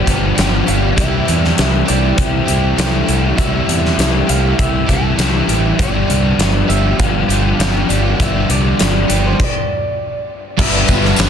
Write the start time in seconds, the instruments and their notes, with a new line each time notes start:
Already playing: overdriven electric guitar G2 D3, twelve-string acoustic guitar G4, clean electric guitar C5
0.06 fingered electric bass G1, overdriven electric guitar F3 G3 B3 G4, twelve-string acoustic guitar D4, kick, closed hi-hat
0.35 fingered electric bass G1, overdriven electric guitar F3 G3 B3 G4, snare, closed hi-hat
0.66 fingered electric bass G1, overdriven electric guitar F3 G3 B3 G4, twelve-string acoustic guitar D4, clean electric guitar F5, closed hi-hat
0.96 fingered electric bass C2, overdriven electric guitar C3 E3 G3 E4 G4, twelve-string acoustic guitar G3, clean electric guitar E5, kick, closed hi-hat
1.25 fingered electric bass E2, overdriven electric guitar G3 E4 G4, closed hi-hat
1.44 snare
1.57 fingered electric bass C2, overdriven electric guitar E3 G3 E4 G4, twelve-string acoustic guitar A3, snare, closed hi-hat
1.85 overdriven electric guitar G3 E4 G4, twelve-string acoustic guitar E4, clean electric guitar D5, closed hi-hat
1.90 fingered electric bass C2
2.17 fingered electric bass C2, overdriven electric guitar C3 E3 G3 E4 G4, twelve-string acoustic guitar G4, clean electric guitar C5, kick, closed hi-hat
2.46 fingered electric bass C2, overdriven electric guitar G3 E4 G4, twelve-string acoustic guitar E4, closed hi-hat
2.76 fingered electric bass C2, overdriven electric guitar E3 G3 E4 G4, twelve-string acoustic guitar A3, snare, closed hi-hat
3.06 fingered electric bass C2, overdriven electric guitar G3 E4 G4, twelve-string acoustic guitar E4, closed hi-hat
3.35 fingered electric bass C2, overdriven electric guitar C3 E3 G3 E4 G4, twelve-string acoustic guitar G3, clean electric guitar E5, kick, closed hi-hat
3.66 fingered electric bass E2, overdriven electric guitar G3 E4 G4, closed hi-hat
3.85 snare
3.98 fingered electric bass C2, overdriven electric guitar E3 G3 E4 G4, twelve-string acoustic guitar A3, snare, closed hi-hat
4.27 fingered electric bass C2, overdriven electric guitar G3 E4 G4, twelve-string acoustic guitar E4, clean electric guitar F5, closed hi-hat
4.59 fingered electric bass C2, overdriven electric guitar C3 E3 G3 E4 G4, twelve-string acoustic guitar G4, clean electric guitar E5, kick, closed hi-hat
4.86 fingered electric bass C2, overdriven electric guitar G3 E4 G4, twelve-string acoustic guitar E4, clean electric guitar A5, kick, closed hi-hat
5.16 fingered electric bass C2, overdriven electric guitar E3 G3 E4 G4, twelve-string acoustic guitar A3, snare, closed hi-hat
5.47 fingered electric bass A1, overdriven electric guitar G3 E4 G4, twelve-string acoustic guitar E4, closed hi-hat
5.77 fingered electric bass G1, overdriven electric guitar G2 D3 F3 G3 B3 G4, twelve-string acoustic guitar F3, clean electric guitar D5, kick, closed hi-hat
6.08 fingered electric bass C2, overdriven electric guitar F3 G3 B3 G4, closed hi-hat
6.38 fingered electric bass G1, overdriven electric guitar F3 G3 B3 G4, snare, closed hi-hat
6.68 fingered electric bass G1, overdriven electric guitar F3 G3 B3 G4, twelve-string acoustic guitar D4, clean electric guitar E5, closed hi-hat
6.99 fingered electric bass G1, overdriven electric guitar G2 D3 F3 G3 B3 G4, twelve-string acoustic guitar G4, clean electric guitar F5, kick, closed hi-hat
7.29 fingered electric bass G1, overdriven electric guitar F3 G3 B3 G4, twelve-string acoustic guitar D4, closed hi-hat
7.59 fingered electric bass G1, overdriven electric guitar F3 G3 B3 G4, clean electric guitar F5, snare, closed hi-hat
7.89 fingered electric bass G1, overdriven electric guitar F3 G3 B3 G4, twelve-string acoustic guitar D4, closed hi-hat
8.19 fingered electric bass G1, overdriven electric guitar G2 D3 F3 G3 B3 G4, twelve-string acoustic guitar F3, clean electric guitar E5, kick, closed hi-hat
8.48 fingered electric bass C2, overdriven electric guitar F3 G3 B3 G4, clean electric guitar D5, closed hi-hat
8.79 fingered electric bass G1, overdriven electric guitar F3 G3 B3 G4, snare, closed hi-hat
9.08 fingered electric bass G1, overdriven electric guitar F3 G3 B3 G4, twelve-string acoustic guitar D4, closed hi-hat
9.27 clean electric guitar C5
9.40 clean electric guitar D5, kick, crash
10.57 fingered electric bass G1, overdriven electric guitar G2 D3 G3 B3 D4 B4, twelve-string acoustic guitar G3, clean electric guitar E5, kick, crash
10.87 fingered electric bass G1, overdriven electric guitar B3 D4 B4, twelve-string acoustic guitar B3, kick, tambourine
11.02 snare, tambourine
11.16 fingered electric bass G1, overdriven electric guitar G3 B3 D4 B4, twelve-string acoustic guitar G3, snare, tambourine, crash